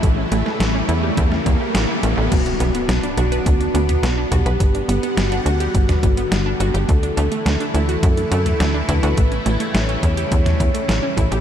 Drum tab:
CC |----------------|x---------------|----------------|----------------|
HH |x-x-x-x-x-x-x-x-|xxxxxxxxxxxxx-xx|xxxxxxxxxxxxx-xx|xxxxxxxxxxxxx-xx|
SD |---oo----o--o---|----o-------o---|----o----o--o---|----o-------o---|
T2 |----------------|-----------o--o-|---------o------|-----------o--o-|
BD |o-------o-o-----|o-------o-------|o-------o-o-----|o-------o-------|

CC |----------------|
HH |xxxxxxxxxxxxx-xx|
SD |----o----o--o---|
T2 |---------o------|
BD |o-----o-o-o---o-|